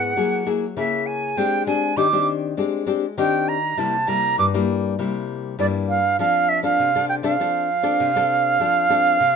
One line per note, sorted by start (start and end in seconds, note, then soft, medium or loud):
0.00 0.14 G#2 medium
0.00 0.12 B3 medium
0.00 0.13 E4 medium
0.00 0.13 G#4 medium
0.00 0.47 F#5 medium
0.16 0.74 F#3 medium
0.16 0.42 A#3 medium
0.16 0.42 E4 soft
0.16 0.42 G#4 medium
0.46 0.64 A#3 medium
0.46 0.64 E4 medium
0.46 0.64 G#4 medium
0.77 1.34 C#3 medium
0.77 1.32 A#3 medium
0.77 1.32 E4 medium
0.77 1.33 G#4 medium
0.77 1.08 E5 medium
1.06 1.39 G#5 medium
1.37 1.94 G#3 medium
1.37 1.62 C4 medium
1.37 1.63 D4 medium
1.37 1.63 G4 medium
1.37 1.66 G5 medium
1.67 1.92 C4 medium
1.67 1.92 D4 medium
1.67 1.93 G4 medium
1.67 1.99 G#5 medium
1.97 2.54 D#3 medium
1.97 2.06 C4 medium
1.97 2.06 D4 medium
1.97 2.07 G4 medium
1.97 2.27 D6 medium
2.12 2.53 C4 medium
2.12 2.53 D4 medium
2.12 2.53 G4 medium
2.57 3.15 G#3 medium
2.57 2.83 C4 soft
2.57 2.83 D4 soft
2.57 2.83 G4 soft
2.86 3.05 C4 medium
2.86 3.05 D4 medium
2.86 3.05 G4 medium
3.18 3.75 D#3 medium
3.18 3.56 C4 medium
3.18 3.57 D4 medium
3.18 3.57 G4 medium
3.18 3.50 G5 medium
3.48 3.80 A#5 medium
3.77 4.35 C3 medium
3.77 3.96 G3 medium
3.77 3.96 A#3 medium
3.77 3.96 E4 medium
3.77 4.10 A5 medium
4.07 4.48 G3 medium
4.07 4.48 A#3 medium
4.07 4.48 E4 medium
4.07 4.38 A#5 loud
4.38 4.95 G2 medium
4.38 4.46 D6 medium
4.54 4.94 G3 medium
4.54 4.94 A#3 medium
4.54 4.94 E4 medium
4.99 5.56 C3 medium
4.99 5.54 G3 soft
4.99 5.54 A#3 soft
4.99 5.54 E4 soft
5.59 6.16 G2 medium
5.59 5.97 G3 soft
5.59 5.98 A#3 medium
5.59 5.98 E4 medium
5.59 5.66 D5 medium
5.89 6.17 F5 medium
6.19 6.76 F3 medium
6.19 6.59 C4 medium
6.19 6.60 D4 soft
6.19 6.60 A4 medium
6.19 6.50 F5 loud
6.49 6.63 E5 loud
6.63 6.89 C4 medium
6.63 6.89 D4 medium
6.63 6.89 A4 medium
6.63 7.06 F5 loud
6.79 7.37 C3 medium
6.95 7.20 C4 medium
6.95 7.20 D4 medium
6.95 7.20 A4 medium
7.09 7.15 G5 medium
7.23 7.34 C4 medium
7.23 7.34 D4 medium
7.23 7.34 A4 medium
7.23 9.36 F5 loud
7.40 7.97 F3 medium
7.40 7.68 C4 medium
7.40 7.68 D4 soft
7.40 7.68 A4 medium
7.83 8.09 C4 medium
7.83 8.09 D4 medium
7.83 8.09 A4 medium
8.00 8.57 C3 medium
8.16 8.55 C4 medium
8.16 8.56 D4 medium
8.16 8.56 A4 medium
8.60 9.17 F3 medium
8.60 8.85 C4 medium
8.60 8.85 D4 medium
8.60 8.86 A4 medium
8.90 9.18 C4 medium
8.90 9.18 D4 medium
8.90 9.18 A4 medium
9.20 9.36 C3 medium